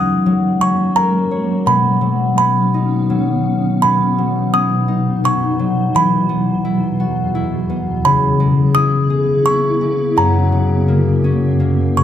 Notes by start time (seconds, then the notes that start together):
Already playing: F#3 C#4 D#4 G#4 D#6
0.26 F#3
0.61 C#4 C#6
0.96 A#4 A#5
1.31 C#5
1.66 B2 D#3 B3 C#4 B5
2.01 F#3
2.37 B3 B5
2.74 D#4
3.10 F#3
3.81 B2 F#3 D#4 B5
4.18 F#3
4.53 B3 D#6
4.88 D#4
5.24 B3 C#6
5.59 F#3
5.94 E2 B2 E3 B5
6.29 B3
6.65 E4
7.00 F#4
7.35 E4
7.70 B3
8.04 C#3 B3 E4 B5
8.40 G#3
8.75 E4 D#6
9.10 G#4
9.46 E4 C#6
9.81 G#3
10.16 F#2 A#3 A#5
10.52 C#3
10.88 A#3
11.24 C#4
11.60 A#3
11.97 C#3 C#6